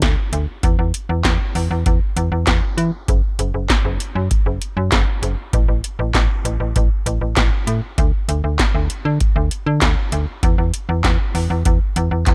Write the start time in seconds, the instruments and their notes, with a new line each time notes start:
0.02 fm bass D2, kick, snare, closed hi-hat
0.33 fm bass D2, closed hi-hat
0.63 fm bass E2, kick, closed hi-hat
0.79 fm bass E2
0.94 closed hi-hat
1.09 fm bass E2
1.25 fm bass E2, kick, snare, clap, closed hi-hat
1.55 fm bass E2, open hi-hat
1.71 fm bass E2
1.86 fm bass E2, kick, closed hi-hat
2.16 fm bass E2, closed hi-hat
2.32 fm bass E2
2.47 fm bass E2, kick, snare, clap, closed hi-hat
2.77 fm bass E3, closed hi-hat
3.08 fm bass F#1, kick, closed hi-hat
3.39 fm bass F#1, closed hi-hat
3.54 fm bass F#1
3.70 kick, snare, clap, closed hi-hat
3.85 fm bass F#1
4.00 closed hi-hat
4.15 fm bass F#2
4.31 kick, closed hi-hat
4.46 fm bass F#1
4.62 closed hi-hat
4.77 fm bass F#2
4.92 fm bass F#1, kick, snare, clap, closed hi-hat
5.22 fm bass F#1, closed hi-hat
5.53 fm bass A1, kick, closed hi-hat
5.68 fm bass A1
5.84 closed hi-hat
5.99 fm bass A1
6.14 fm bass A1, kick, snare, clap, closed hi-hat
6.45 fm bass A1, closed hi-hat
6.60 fm bass A1
6.76 fm bass A1, kick, closed hi-hat
7.06 fm bass A1, closed hi-hat
7.21 fm bass A1
7.36 fm bass A1, kick, snare, clap, closed hi-hat
7.67 fm bass A2, closed hi-hat
7.98 fm bass D2, kick, closed hi-hat
8.29 fm bass D2, closed hi-hat
8.44 fm bass D2
8.59 kick, snare, clap, closed hi-hat
8.74 fm bass D2
8.90 closed hi-hat
9.05 fm bass D3
9.20 kick, closed hi-hat
9.36 fm bass D2
9.51 closed hi-hat
9.66 fm bass D3
9.81 fm bass D2, kick, snare, clap, closed hi-hat
10.12 fm bass D2, closed hi-hat
10.43 fm bass E2, kick, closed hi-hat
10.58 fm bass E2
10.74 closed hi-hat
10.89 fm bass E2
11.04 fm bass E2, kick, snare, clap, closed hi-hat
11.35 fm bass E2, open hi-hat
11.50 fm bass E2
11.65 fm bass E2, kick, closed hi-hat
11.96 fm bass E2, closed hi-hat
12.11 fm bass E2
12.26 fm bass E2, kick, clap, closed hi-hat